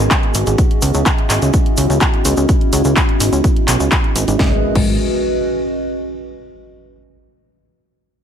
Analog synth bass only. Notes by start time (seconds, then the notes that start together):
0.35 G#1
0.47 G#1
0.82 C#2
0.94 C#2
1.30 G#1
1.42 C#2
1.77 C#2
1.90 C#2
2.25 C#2
2.37 C#2
2.73 C#2
2.85 C#2
3.20 G#1
3.32 C#2
3.68 B1
3.80 C#2
4.16 G#1
4.28 G#1
4.39 G#1
4.75 G#1